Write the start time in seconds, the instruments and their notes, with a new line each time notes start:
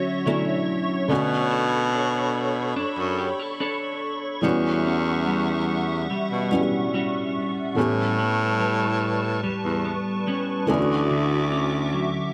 Already playing: felt piano D3 F#3 A3 C#4 E4, clean electric guitar D3 F#3 C#4, analog synth pad F#4 C#5 E5 C#6
0.26 felt piano D3 F#3 A3 C#4 E4, clean electric guitar F#3 C#4 E4
1.08 baritone saxophone B2, felt piano D3 A3 B3 C#4, clean electric guitar B3, analog synth pad A4 B5
1.13 felt piano F#4
1.51 clean electric guitar A4
1.93 clean electric guitar D4
2.76 baritone saxophone F#2, clean electric guitar D4
2.97 baritone saxophone F#2
3.18 clean electric guitar G4
3.40 clean electric guitar A4
3.60 clean electric guitar D4 A4 C#5
4.42 baritone saxophone E2, felt piano E3 G3 B3 C#4, clean electric guitar E3, analog synth pad G3 E5 F#5
4.46 felt piano F#4
4.85 clean electric guitar C#4
5.27 clean electric guitar G3
6.10 baritone saxophone B2, clean electric guitar G3
6.31 baritone saxophone B2
6.51 felt piano E3 G3 B3 C#4 F#4, clean electric guitar C#4
6.60 felt piano G4
6.94 clean electric guitar G3 C#4 F#4
7.75 baritone saxophone A2, clean electric guitar A2, felt piano E3 A3 B3 C#4, analog synth pad B4 A5
7.80 felt piano G4
8.18 clean electric guitar B3
8.60 clean electric guitar G3
9.43 baritone saxophone E2, clean electric guitar G3
9.64 baritone saxophone E2
9.85 clean electric guitar B3
10.27 clean electric guitar G3 B3 C#4
10.67 baritone saxophone D2, clean electric guitar D3, felt piano E3 A3 C#4 D4, analog synth pad F#4 E5 D6
10.72 felt piano E4
10.78 felt piano F#4
11.10 clean electric guitar D3
11.52 clean electric guitar C#4
11.93 clean electric guitar F#3